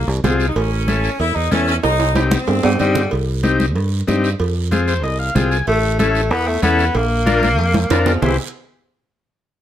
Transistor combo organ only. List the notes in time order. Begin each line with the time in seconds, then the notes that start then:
0.24 C4 F4 G#4
0.87 C#4 E4 A4
1.51 C#4 E4 A4
2.15 C4 D#4 G4
2.79 C4 D#4 G4
3.43 C4 D#4 G4
4.07 C4 D#4 G4
4.71 C4 F4 G#4
4.88 C5
5.03 D#5
5.19 F5
5.35 C4 F4 G#4 G5
5.51 G#5
5.99 C#4 E4 A4
6.62 C#4 E4 A4
7.26 D4 F4 A#4
7.90 D4 F4 A#4
8.22 E4 G4 C5